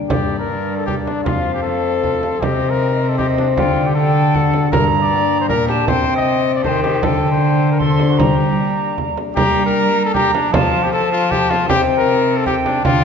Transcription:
Already playing: harp G3 A#3 D4
0.09 harp G2, cello G2, cornet G4, recorder D5, frame drum
0.39 cornet A#4
0.49 harp A#3 D4
0.77 cornet A4
0.86 harp A#3 D4, cornet G4, recorder D5, frame drum
1.05 cornet D4, frame drum
1.24 harp F2, cello F2, cornet F4, recorder F5, frame drum
1.54 cornet G4
1.62 harp A3 C4 F4, cornet A4, recorder F5
2.04 harp A3 C4 F4, frame drum
2.23 frame drum
2.41 cello C3, harp C3, cornet G4, recorder D#5, frame drum
2.70 cornet A#4
2.81 harp C4 D#4 G4
3.09 cornet A4
3.18 harp C4 D#4 G4, cornet G4, recorder D#5, frame drum
3.38 cornet D4, frame drum
3.57 cello D3, harp D3, cornet F4, recorder G5, frame drum
3.87 cornet G4
3.96 harp A3 D4 G4, cornet A4, recorder G5
4.35 harp A3 D4 F#4, recorder F#5, frame drum
4.54 frame drum
4.72 harp G2, cello G2, cornet A#4, recorder A#5, frame drum
5.02 cornet D5
5.10 harp A#3 D4 G4
5.40 cornet C5
5.48 cello A#2, harp A#2 A#3 D4 G4, cornet A#4, recorder A#5, frame drum
5.69 cornet G4, recorder A5, frame drum
5.87 cello C3, harp C3, cornet C5, recorder G5, frame drum
6.16 cornet D#5
6.26 harp C4 G4
6.55 cornet D5
6.64 harp D#3 C4 G4, cello D#3, cornet C5, recorder A5, frame drum
6.69 recorder G5
6.83 cornet G4, frame drum
7.03 harp D3, cello D3, cornet A4, recorder G5, frame drum
7.32 cornet C5
7.41 harp A3 D4
7.71 cornet A#4
7.79 harp D3 C4 D4, cello D3, cornet A4, recorder C6, frame drum
8.00 frame drum
8.10 cornet F#4
8.18 harp G3, cello G3, cornet G4, recorder A#5, frame drum
8.59 harp A#3 D4
8.98 harp A#3 D4, frame drum
9.17 frame drum
9.35 cello G3, harp G3 A#3 D4, cornet G4, recorder A#5, frame drum
9.66 cornet A#4
10.05 cornet A4
10.14 cornet G4, recorder A#5, frame drum
10.34 cornet D4, frame drum
10.50 cello F3, harp F3 A3 C4 F4, cornet F4, recorder A5, frame drum
10.83 cornet G4
10.92 cornet A4, recorder A5
11.12 cornet F4
11.31 cornet G4, frame drum
11.50 cornet F4, frame drum
11.66 harp C3 C4 D#4, cello C3, cornet G4, recorder G5, frame drum
11.98 cornet A#4
12.37 cornet A4
12.45 cornet G4, recorder G5, frame drum
12.65 cornet D4, frame drum
12.81 harp D3 A3 D4, cello D3, cornet F4, recorder G5, frame drum

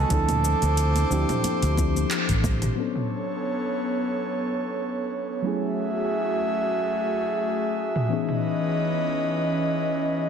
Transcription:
Already playing: fm electric piano E3 B3 C#4 D#4 F#4, flugelhorn A4
0.09 fretless electric bass D2, fm electric piano F3 C4 D4 E4, analog synth pad C5 D6, kick, closed hi-hat, muted conga, shaker
0.13 fm electric piano A4
0.29 closed hi-hat, mid tom, high conga, shaker
0.45 shaker
0.62 fretless electric bass D2, closed hi-hat, muted conga, shaker
0.77 closed hi-hat, shaker
0.95 closed hi-hat, high conga, shaker
1.10 fretless electric bass D2, fm electric piano F3 C4 D4 E4 G4, shaker
1.29 closed hi-hat, mid tom, muted conga, low conga, shaker
1.44 closed hi-hat, high conga, shaker
1.62 fretless electric bass D2, closed hi-hat, shaker
1.75 fm electric piano F3 C4 D4 E4, kick, muted conga, shaker
1.80 fm electric piano A4
1.96 high conga, shaker
2.11 clap, closed hi-hat, shaker
2.29 fretless electric bass A1, kick, closed hi-hat, shaker
2.44 kick, muted conga, high conga, low conga, shaker
2.62 closed hi-hat, mid tom, shaker
2.75 fm electric piano F#3 B3 C#4 D4, analog synth pad B3 A4 C#5
2.80 fm electric piano A4
2.96 mid tom
5.42 fm electric piano F#3 A3 C#4 E4, analog synth pad A3 F#4 G#4 E5
5.47 fm electric piano G#4
7.96 mid tom
8.08 fm electric piano E3 B3 C#4 D#4, analog synth pad E3 C#4 B4 D#5
8.13 fm electric piano G#4
8.29 mid tom

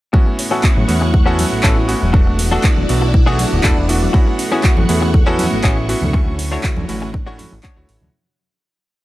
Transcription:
0.13 synth arpeggio sound F#3, string machine A3 F#5 C#6, electric grand piano B3 C#4 E4 F#4, muted clean electric guitar stroke, kick
0.26 synth arpeggio sound A3, muted clean electric guitar stroke
0.39 synth arpeggio sound C#4, open hi-hat
0.51 electric grand piano B3 C#4 E4 F#4, clean electric guitar C#4 F#4 A4, synth arpeggio sound E4
0.64 synth arpeggio sound F#4, kick, clap
0.76 analog synth bass A1, synth arpeggio sound F#3, muted clean electric guitar stroke
0.88 analog synth bass E2, synth arpeggio sound A3, electric grand piano B3 C#4 E4 F#4, open hi-hat
1.01 synth arpeggio sound C#4, muted clean electric guitar stroke
1.13 synth arpeggio sound E4, muted clean electric guitar stroke, kick
1.26 electric grand piano B3 C#4 E4 F#4, clean electric guitar C#4 F#4 A4, synth arpeggio sound F#4
1.39 synth arpeggio sound F#3, open hi-hat
1.52 analog synth bass A1, synth arpeggio sound A3
1.63 analog synth bass A1, electric grand piano B3 C#4 E4 F#4, clean electric guitar C#4 F#4 A4, synth arpeggio sound C#4, kick, clap
1.77 synth arpeggio sound E4
1.88 electric grand piano B3 C#4 E4 F#4, synth arpeggio sound F#4, muted clean electric guitar stroke, open hi-hat
2.02 analog synth bass E1, synth arpeggio sound F#3
2.13 synth arpeggio sound F#3, electric grand piano A3 B3 D4 F#4, string machine E4 D5 F#5, muted clean electric guitar stroke, kick
2.26 synth arpeggio sound A3, muted clean electric guitar stroke
2.39 synth arpeggio sound B3, open hi-hat
2.51 electric grand piano A3 B3 D4 F#4, clean electric guitar D4 F#4 A4, synth arpeggio sound D4
2.64 synth arpeggio sound E4, kick, clap
2.76 analog synth bass E1, synth arpeggio sound F#3, muted clean electric guitar stroke
2.89 analog synth bass B1, synth arpeggio sound A3, electric grand piano A3 B3 D4 F#4, open hi-hat
3.02 synth arpeggio sound B3, muted clean electric guitar stroke
3.13 synth arpeggio sound D4, muted clean electric guitar stroke, kick
3.26 electric grand piano A3 B3 D4 F#4, clean electric guitar D4 F#4 G#4, synth arpeggio sound E4
3.39 synth arpeggio sound F#3, open hi-hat
3.52 analog synth bass D1, synth arpeggio sound A3
3.63 analog synth bass E1, electric grand piano A3 B3 D4 E4, synth arpeggio sound B3, clean electric guitar D4 F#4 A4, kick, clap
3.77 analog synth bass E1, synth arpeggio sound D4
3.88 electric grand piano A3 B3 D4 F#4, synth arpeggio sound E4, muted clean electric guitar stroke, open hi-hat
4.02 synth arpeggio sound F#3
4.13 string machine A3 C#6, electric grand piano B3 C#4 E4 F#4, muted clean electric guitar stroke, kick
4.27 synth arpeggio sound A3, muted clean electric guitar stroke
4.39 synth arpeggio sound C#4, open hi-hat
4.51 electric grand piano B3 C#4 E4 F#4, clean electric guitar C#4 F#4 G#4, synth arpeggio sound E4
4.64 kick, clap
4.77 analog synth bass A1, synth arpeggio sound F#3, muted clean electric guitar stroke, high conga
4.89 analog synth bass E2, synth arpeggio sound A3, electric grand piano B3 C#4 E4 F#4, open hi-hat
5.02 synth arpeggio sound C#4, muted clean electric guitar stroke
5.14 synth arpeggio sound E4, muted clean electric guitar stroke, kick
5.26 electric grand piano B3 C#4 E4 F#4, clean electric guitar C#4 F#4 A4, synth arpeggio sound F#4
5.38 synth arpeggio sound F#3, open hi-hat, high conga
5.51 analog synth bass A1, synth arpeggio sound A3
5.63 analog synth bass A1, electric grand piano B3 C#4 E4 F#4, synth arpeggio sound C#4, clean electric guitar C#4 F#4 G#4, kick, clap
5.77 synth arpeggio sound E4
5.89 electric grand piano B3 C#4 E4 F#4, synth arpeggio sound F#4, muted clean electric guitar stroke, open hi-hat
6.01 analog synth bass D2, synth arpeggio sound F#3, high conga, low conga
6.13 string machine D3, synth arpeggio sound F#3, electric grand piano A3 C#4 E4 F#4, muted clean electric guitar stroke, kick
6.27 synth arpeggio sound A3, muted clean electric guitar stroke
6.38 synth arpeggio sound C#4, open hi-hat
6.51 electric grand piano A3 E4 F#4 C#5, synth arpeggio sound D4, clean electric guitar D4 F#4 C#5
6.63 synth arpeggio sound F#4, kick, clap
6.77 analog synth bass D2, synth arpeggio sound F#3, muted clean electric guitar stroke, high conga
6.88 analog synth bass A1, electric grand piano A3 C#4 E4 F#4, synth arpeggio sound A3, open hi-hat
7.02 synth arpeggio sound C#4, muted clean electric guitar stroke
7.13 synth arpeggio sound D4, muted clean electric guitar stroke, kick
7.26 electric grand piano A3 C#4 E4 F#4, clean electric guitar D4 F#4 C#5, synth arpeggio sound F#4
7.38 synth arpeggio sound F#3, electric grand piano A3 C#4 E4 F#4, open hi-hat, high conga
7.52 analog synth bass A1, synth arpeggio sound A3
7.63 synth arpeggio sound C#4, clean electric guitar D4 F#4 C#5, kick, clap
7.76 analog synth bass D2, electric grand piano A3 E4 F#4 C#5, synth arpeggio sound D4
7.89 analog synth bass A1, synth arpeggio sound F#4, muted clean electric guitar stroke, open hi-hat
8.01 analog synth bass D2, synth arpeggio sound F#3, high conga, low conga

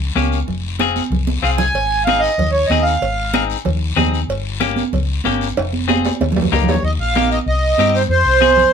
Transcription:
0.15 fingered electric bass C#2, clean electric guitar A#3 C#4 G4, high conga, short guiro
0.32 short guiro
0.47 fingered electric bass F1, high conga, low conga, long guiro
0.79 clean electric guitar C4 F4 G#4, high conga, short guiro
0.96 high conga, short guiro
1.10 fingered electric bass C2, high conga, low conga, long guiro
1.27 high conga
1.42 fingered electric bass C2, clean electric guitar C4 F4 G#4, accordion F5, short guiro
1.57 accordion G#5, low conga, short guiro
1.74 fingered electric bass G#1, cowbell, high conga, long guiro
2.05 clean electric guitar C4 D#4, accordion F5, high conga, short guiro
2.09 clean electric guitar G#4
2.19 accordion D#5
2.24 short guiro
2.38 fingered electric bass D#2, cowbell, high conga, low conga, long guiro
2.52 accordion C#5
2.67 fingered electric bass D#2, accordion D#5, high conga
2.71 clean electric guitar C4 D#4 G#4, short guiro
2.83 accordion F5
2.87 short guiro
3.02 fingered electric bass G#1, cowbell, high conga, long guiro
3.34 clean electric guitar C4 D#4 G#4, high conga, short guiro
3.50 short guiro
3.65 fingered electric bass D#2, cowbell, high conga, low conga, long guiro
3.96 fingered electric bass D#2, clean electric guitar C4 D#4 G#4, high conga, low conga, low timbale, short guiro
4.14 short guiro
4.28 fingered electric bass G1, cowbell, high conga, long guiro
4.60 clean electric guitar A#3 C#4 G4, high conga, short guiro
4.76 high conga, short guiro
4.93 fingered electric bass C#2, cowbell, high conga, low conga, long guiro
5.24 fingered electric bass G1, clean electric guitar A#3 C#4 G4, high conga, short guiro
5.41 short guiro
5.57 fingered electric bass F1, cowbell, high conga, high timbale, long guiro
5.73 high conga
5.88 clean electric guitar C4 F4 G#4, high conga, low timbale, short guiro
6.05 low timbale, short guiro
6.21 fingered electric bass D#2, cowbell, high conga, low timbale, long guiro
6.32 low conga
6.36 low timbale
6.42 low conga
6.52 fingered electric bass C#2, clean electric guitar A#3 D#4 G4, accordion A#4, low conga, low timbale, short guiro
6.63 fingered electric bass D#2, low conga
6.68 accordion C#5, low timbale, short guiro
6.74 low conga
6.83 fingered electric bass D#2, accordion D#5, high conga, long guiro
6.98 fingered electric bass A#1, accordion F5
7.16 clean electric guitar A#3 D#4 G4, high conga, short guiro
7.31 accordion D#5, short guiro
7.46 fingered electric bass C2, accordion D#5, high conga, long guiro
7.78 fingered electric bass G2, clean electric guitar C4 D#4 G4, high conga, short guiro
7.95 accordion C5, short guiro
8.08 fingered electric bass F2, accordion C5, high conga, long guiro
8.25 fingered electric bass C2
8.41 clean electric guitar C4 F4 G#4, high conga, short guiro
8.57 low conga, short guiro

